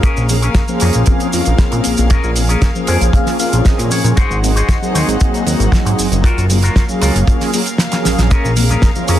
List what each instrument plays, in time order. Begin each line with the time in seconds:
Already playing: string section A#3 A#4 F5
0.03 analog synth bass A#1, clean electric guitar C#4 G#4 A#4, string section G#4, kick, closed hi-hat, cabasa
0.17 analog synth bass A#1, cabasa
0.29 analog polysynth F3 A#3 C4 C#4 G#4, open hi-hat, cabasa
0.42 clean electric guitar C#4 G#4 A#4, closed hi-hat, cabasa
0.55 kick, snare, closed hi-hat, cabasa
0.68 analog polysynth F3 A#3 C#4 G#4 C5, cabasa
0.80 analog synth bass F2, clean electric guitar C#4 G#4 A#4, open hi-hat, cabasa
0.93 analog synth bass A#1, closed hi-hat, cabasa
1.06 analog polysynth F3 A#3 C4 C#4, muted clean electric guitar stroke, kick, closed hi-hat, cabasa
1.20 closed hi-hat, cabasa
1.33 analog synth bass F2, analog polysynth F3 A#3 C4 C#4 F4, open hi-hat, cabasa
1.45 analog synth bass A#1, closed hi-hat, cabasa
1.58 analog polysynth F3 A#3 C4 C#4 G#4, muted clean electric guitar stroke, kick, snare, closed hi-hat, cabasa
1.71 analog synth bass A#2, muted clean electric guitar stroke, closed hi-hat, cabasa
1.84 analog synth bass A#1, muted clean electric guitar stroke, open hi-hat, cabasa
1.97 analog synth bass A#1, analog polysynth F3 A#3 C4 C#4 G#4, closed hi-hat, cabasa
2.09 analog synth bass A#1, clean electric guitar C#4 G#4 A#4, kick, closed hi-hat, cabasa
2.24 analog synth bass A#1, cabasa
2.35 analog polysynth F3 A#3 C4 C#4 G#4, open hi-hat, cabasa
2.49 clean electric guitar C#4 G#4 A#4, closed hi-hat, cabasa
2.62 kick, snare, closed hi-hat, cabasa
2.75 analog polysynth F3 A#3 C#4 G#4 C5, cabasa
2.87 analog synth bass F2, clean electric guitar C#4 G#4 A#4 G#5, open hi-hat, cabasa
3.01 analog synth bass A#1, closed hi-hat, cabasa
3.13 analog polysynth F3 A#3 C4 C#4 G#4, clean electric guitar F5, muted clean electric guitar stroke, kick, closed hi-hat, cabasa
3.26 snare, open hi-hat, cabasa
3.39 analog polysynth F3 A#3 C4 C#4 F4, clean electric guitar F5, open hi-hat, cabasa
3.53 analog synth bass A#1, closed hi-hat, cabasa
3.65 analog polysynth F3 A#3 C4 C#4 G#4, clean electric guitar D#5, muted clean electric guitar stroke, kick, snare, closed hi-hat, cabasa
3.78 analog synth bass A#2, muted clean electric guitar stroke, closed hi-hat, cabasa
3.91 analog synth bass A#2, clean electric guitar C#5, muted clean electric guitar stroke, open hi-hat, cabasa
4.04 analog synth bass A#2, analog polysynth F3 A#3 C4 C#4 G#4, closed hi-hat, cabasa
4.16 analog synth bass G#1, string section D#4 C5 F#5, clean electric guitar F#4 G#4 C5, kick, closed hi-hat, cabasa
4.30 analog synth bass G#1, cabasa
4.42 analog polysynth F#3 A#3 C4 D#4 G#4, open hi-hat, cabasa
4.56 clean electric guitar F#4 G#4 C5, closed hi-hat, cabasa
4.69 kick, snare, closed hi-hat, cabasa
4.81 analog polysynth F#3 A#3 C4 D#4 G#4, cabasa
4.94 analog synth bass D#2, clean electric guitar F#4 G#4 C5, open hi-hat, cabasa
5.08 analog synth bass G#1, closed hi-hat, cabasa
5.20 analog polysynth F#3 A#3 C4 D#4 G#4, muted clean electric guitar stroke, kick, closed hi-hat, cabasa
5.34 closed hi-hat, cabasa
5.46 analog synth bass D#2, analog polysynth F#3 A#3 C4 D#4 F#4, open hi-hat, cabasa
5.59 analog synth bass G#1, closed hi-hat, cabasa
5.72 analog polysynth F#3 A#3 C4 D#4 G#4, muted clean electric guitar stroke, kick, snare, closed hi-hat, cabasa
5.85 analog synth bass G#2, muted clean electric guitar stroke, closed hi-hat, cabasa
5.98 analog synth bass F#1, muted clean electric guitar stroke, open hi-hat, cabasa
6.11 analog synth bass F#1, analog polysynth F#3 A#3 C4 D#4 G#4, closed hi-hat, cabasa
6.24 analog synth bass F#1, string section F#3 A#3 A#4 F5, clean electric guitar F4 F#4 A#4, kick, closed hi-hat, cabasa
6.38 analog synth bass F#1, closed hi-hat, cabasa
6.50 analog polysynth F#3 A#3 C#4 F4 G#4, open hi-hat, cabasa
6.62 clean electric guitar F4 F#4 A#4, closed hi-hat, cabasa
6.76 kick, snare, closed hi-hat, cabasa
6.89 analog polysynth F#3 A#3 C#4 G#4 F5, cabasa
7.01 analog synth bass C#2, clean electric guitar F4 F#4 A#4, open hi-hat, cabasa
7.15 analog synth bass F#1, closed hi-hat, cabasa
7.27 analog polysynth F#3 A#3 C#4 F4 G#4, muted clean electric guitar stroke, kick, closed hi-hat, cabasa
7.41 snare, open hi-hat, cabasa
7.53 analog polysynth F#3 A#3 C#4 F4 G#4, open hi-hat, cabasa
7.66 closed hi-hat, cabasa
7.78 muted clean electric guitar stroke, snare, closed hi-hat, cabasa
7.92 analog polysynth F#3 A#3 C#4 G#4 F5, muted clean electric guitar stroke, snare, closed hi-hat, cabasa
8.04 analog synth bass A#1, muted clean electric guitar stroke, snare, open hi-hat, cabasa
8.18 analog synth bass A#1, snare, closed hi-hat, cabasa
8.30 analog synth bass A#1, clean electric guitar C#4 G#4 A#4, string section G#4, kick, closed hi-hat, muted conga, cabasa
8.44 analog synth bass A#1, high conga, cabasa
8.56 analog polysynth F3 A#3 C4 C#4 G#4, open hi-hat, cabasa
8.69 clean electric guitar C#4 G#4 A#4, closed hi-hat, muted conga, low conga, cabasa
8.82 kick, snare, closed hi-hat, cabasa
8.95 analog polysynth F3 A#3 C#4 G#4 C5, muted conga, high conga, cabasa
9.08 analog synth bass F2, clean electric guitar C#4 G#4 A#4, open hi-hat, cabasa